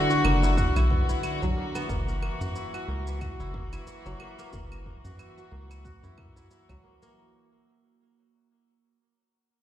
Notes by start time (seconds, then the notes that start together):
Already playing: D3 F#3 B3 E4 F#4 B4
0.10 F#4, shaker
0.24 F#1 A#3, claves
0.43 E4, shaker
0.57 F#4, kick, shaker
0.76 B1 E4, claves, shaker
0.90 B3, kick
1.09 E4, shaker
1.23 E4, claves, shaker
1.42 B1 F#3, kick, shaker
1.56 A#3
1.75 B3, claves, shaker
1.89 F#1 E3 A#3, kick, shaker
2.08 A#4, shaker
2.22 A#3, claves
2.41 F#2 F#4, shaker
2.55 E4, shaker
2.74 F#4, claves, shaker
2.88 C#2 A#3
3.07 E4, shaker
3.21 F#4, kick, claves, shaker
3.40 F#1 E4, shaker
3.54 A#3, kick
3.73 E4, claves, shaker
3.87 E4, shaker
4.06 F#1 F#3, shaker
4.20 A#3, claves
4.39 A#3, shaker
4.53 F#1 A#3, kick, shaker
4.71 A#4, claves, shaker
4.86 A#3, kick
5.04 F#2 F#4, shaker
5.19 E4, claves, shaker
5.37 F#4, shaker
5.51 C#2 A#3
5.70 E4, claves, shaker
5.84 F#4, kick, shaker
6.03 F#2 E4, shaker
6.17 A#3, kick, claves
6.36 E4, shaker
6.51 E4, shaker
6.69 C#2 F#3, kick, claves, shaker
6.84 A#3
7.02 A#3, shaker